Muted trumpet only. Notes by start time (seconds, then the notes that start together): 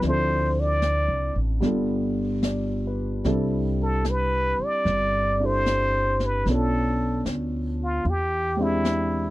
0.08 C5
0.60 D5
3.83 A4
4.10 B4
4.65 D5
5.45 C5
6.26 B4
6.53 A4
7.83 F4
8.10 G4
8.63 E4